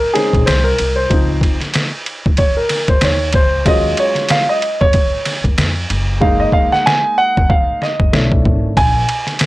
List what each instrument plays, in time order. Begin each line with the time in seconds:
Already playing: grand piano A#4
0.13 grand piano G#3 C4 C#4 D#4 G#4, snare, ride
0.33 upright bass A#1, kick, ride
0.46 upright bass C2, grand piano C5, snare, hi-hat pedal, ride
0.64 grand piano A#4
0.78 upright bass C2, ride
0.96 grand piano C5
1.10 upright bass C#2, grand piano F3 C4 D#4, kick, ride
1.41 kick, ride
1.61 snare, ride
1.74 snare, hi-hat pedal, ride
2.06 ride
2.26 upright bass D#2, kick
2.37 grand piano C#5, kick, ride
2.57 grand piano A#4
2.69 snare, ride
2.88 upright bass C#2, grand piano C5, kick, ride
3.01 upright bass D#2, grand piano C#5, snare, hi-hat pedal, ride
3.33 upright bass C#2, grand piano C5, kick, ride
3.65 upright bass D#2, grand piano F#3 G#3 C#4 F4 D#5, kick, ride
3.97 grand piano C#5, ride
4.15 snare, ride
4.29 grand piano F5, snare, hi-hat pedal, ride
4.49 grand piano D#5
4.62 ride
4.81 upright bass F2, grand piano C#5, kick
4.93 kick, ride
5.25 snare, ride
5.44 upright bass D#2, kick, ride
5.58 upright bass F2, snare, hi-hat pedal, ride
5.90 upright bass F#1, ride
6.20 grand piano G#3 A#3 D#4 F5, kick
6.40 grand piano D#5
6.52 grand piano F5, kick
6.72 grand piano F#5, snare
6.86 grand piano G#5, snare
7.18 grand piano F#5
7.37 upright bass F1, kick
7.50 grand piano F5, kick
7.82 grand piano D#5, snare
8.00 upright bass F#1, kick
8.12 upright bass B1, grand piano A3 C#4 D4 E4, snare
8.32 kick
8.45 upright bass G#1, kick
8.77 upright bass A#1, grand piano G#5, kick, ride
9.09 ride
9.27 snare, ride
9.39 snare, hi-hat pedal, ride